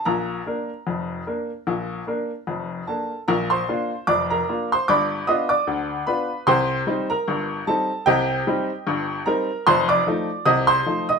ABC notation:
X:1
M:2/4
L:1/16
Q:"Swing 16ths" 1/4=75
K:Bb
V:1 name="Upright piano"
b8- | b6 [Aa]2 | [Bb] [cc']3 [dd'] [Bb]2 [cc'] | [d=bd']2 [ee'] [dd']3 [=Bb]2 |
[cgc']3 [Bb]3 [Aa]2 | [Geg]6 [Bb]2 | [cc'] [dd']3 [ee'] [cc']2 [ee'] |]
V:2 name="Upright piano"
[B,,,B,,]2 [B,DB]2 [F,,,F,,]2 [B,DB]2 | [B,,,B,,]2 [B,DB]2 [F,,,F,,]2 [B,DB]2 | [B,,,B,,]2 [B,DF]2 [F,,,F,,]2 [B,DF]2 | [G,,,G,,]2 [=B,DF]2 [D,,D,]2 [B,DF]2 |
[C,,C,]2 [G,CE]2 [G,,,G,,]2 [G,CE]2 | [C,,C,]2 [G,CE]2 [G,,,G,,]2 [G,CE]2 | [F,,,F,,]2 [F,A,E]2 [C,,C,]2 [F,A,E]2 |]